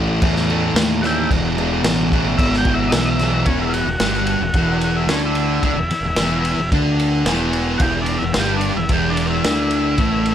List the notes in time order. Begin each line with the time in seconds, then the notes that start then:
Already playing: A1 A2 E3 A3
0.22 E2 A2 E3 A3, kick, crash
0.36 snare
0.50 A2 E3 A3, crash
0.74 D#2 A2 E3 A3, snare, crash
1.02 A2 E3 A3 E4 F#4, snare, crash
1.06 G4
1.30 E1 E2 B2 E3, kick, crash
1.58 E2 B2 E3, crash
1.83 A1 E2 B2, snare, crash
1.87 E3
2.12 E2 B2 E3, kick, crash
2.38 G#1 E2 B2 E3 E5, kick, crash
2.53 snare
2.58 G5
2.65 E2 B2 E3, kick, crash
2.74 E5
2.89 B1 D#5, snare, crash
2.94 E2 B2 E3 E5
3.05 D#5
3.11 E5
3.19 E2 B2 E3, snare, crash
3.46 E1 E2 E3 C#4, kick, ride
3.61 E4
3.69 F4
3.74 F#4, ride
3.86 E1 E2
4.00 G1 G2 G3, snare, ride
4.13 snare
4.27 ride
4.40 E1 E2
4.54 E1 E2 E3, kick, ride
4.81 F#4, ride
4.97 E4
5.06 D2 D3 C#4, snare, ride
5.11 D4
5.26 E4
5.35 ride
5.63 D2 D3 D4 E4, kick, ride
5.74 E1
5.78 E2
5.88 muted fingered electric bass stroke, muted distorted electric guitar stroke, ride
6.01 E1
6.06 E2
6.15 E1, snare, ride
6.20 E2 E3
6.45 ride
6.58 E1 E2
6.71 D2 D3 D4, kick, ride
7.00 ride
7.25 E1 E2 E3, snare, ride
7.53 ride
7.78 E1 F#4 G4, kick, ride
7.83 E2 E3
8.02 D4
8.06 ride
8.18 E1 E4
8.23 E2
8.34 G1 G2 G3, snare, ride
8.39 G4
8.57 D4
8.61 ride
8.76 E1 E2 E4
8.89 E1 E2 E3, kick, ride
8.94 G4
9.10 D4
9.17 ride
9.30 E4
9.44 D2 D3 D4 E4, snare, ride
9.71 ride
9.98 A1 A2 A3, kick, ride
10.26 ride